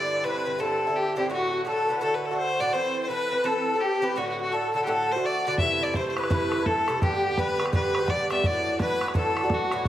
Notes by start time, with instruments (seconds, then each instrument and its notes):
Already playing: bouzouki G2 D3 C4 E4, accordion D5, fiddle D5
0.24 bouzouki G2 D3 C4 E4, fiddle B4, accordion B4
0.45 bouzouki G2 D3 C4 E4
0.59 bouzouki G2 D3 C4 E4, fiddle A4, accordion A4
0.87 bouzouki D3 C4 E4
0.96 accordion G4, fiddle G4
1.16 bouzouki G2 D3 C4 E4, accordion G4, fiddle G4
1.30 bouzouki A2 D3 A3 F#4, accordion F#4, fiddle F#4
1.64 bouzouki A2 D3 A3 F#4, accordion G4 A4, fiddle A4
1.88 bouzouki A2 D3 A3 F#4, accordion B4
2.01 bouzouki A2 D3 A3 F#4, fiddle A4, accordion A4
2.14 fiddle B4
2.25 accordion A4, fiddle A4
2.31 bouzouki D3 A3 F#4
2.37 fiddle C5, accordion C5
2.60 bouzouki A2 D3 A3 F#4, accordion D5, fiddle D5
2.73 bouzouki E3 C4 A4, fiddle C5, accordion C5
3.03 fiddle C5
3.08 bouzouki E3 C4 A4 B4, fiddle B4, accordion B4
3.31 bouzouki E3 C4 A4 B4, accordion B4
3.44 bouzouki E3 C4 A4 B4, fiddle A4, accordion A4
3.74 bouzouki C4 A4 B4
3.80 fiddle G4, accordion G4
4.02 bouzouki E3 C4 A4 B4
4.16 bouzouki A2 D3 A3 F#4, fiddle F#4, accordion F#4
4.29 fiddle F#4
4.40 accordion F#4, fiddle F#4
4.51 bouzouki A2 D3 A3 F#4, accordion A4, fiddle A4
4.74 bouzouki A2 D3 A3 F#4, accordion A4, fiddle A4
4.85 bouzouki A2 D3 A3 F#4, fiddle G4 A4, accordion A4
5.11 accordion C5, fiddle C5
5.16 bouzouki D3 A3 F#4
5.24 accordion D5, fiddle D5
5.46 bouzouki A2 D3 A3 F#4, accordion D5, fiddle D5
5.58 bouzouki C3 E3 A3 E4, fiddle E5, accordion E5, bodhran
5.82 accordion D5, fiddle D5
5.94 bouzouki C3 E3 A3 E4, accordion C5, fiddle C5, bodhran
6.08 fiddle C5
6.17 bouzouki C3 E3 A3 E4, fiddle B4, accordion B4, bodhran
6.24 bodhran
6.28 bouzouki C3 E3 A3 E4, accordion B4 C5, bodhran
6.48 accordion A4, bodhran
6.53 accordion B4
6.60 bouzouki E3 A3 E4
6.66 fiddle A4, accordion A4, bodhran
6.88 bouzouki C3 E3 A3 E4, bodhran
7.02 bouzouki G2 D3 B3 G4, fiddle G4, accordion G4, bodhran
7.37 bouzouki G2 D3 B3 G4, fiddle B4, accordion B4, bodhran
7.60 bouzouki G2 D3 B3 G4, bodhran
7.66 bodhran
7.70 bouzouki G2 D3 B3, accordion C5, bodhran
7.74 bouzouki G4, fiddle B4, accordion B4
7.95 accordion C5, bodhran
8.02 bouzouki D3 B3 G4
8.08 accordion D5, fiddle D5, bodhran
8.30 bouzouki G2 D3 B3 G4, fiddle E5, bodhran
8.44 bouzouki E3 D4 F#4, accordion D5, fiddle D5, bodhran
8.79 bouzouki A2 E3 D4 F#4, fiddle B4, accordion B4, bodhran
9.01 bouzouki A2 E3 D4 F#4, bodhran
9.08 bodhran
9.14 bouzouki A2 E3 D4 F#4, accordion A4, fiddle A4, bodhran
9.37 bodhran
9.43 bouzouki E3 D4 F#4
9.50 accordion F#4, bodhran
9.54 fiddle F#4
9.71 bouzouki A2 E3 D4 F#4, bodhran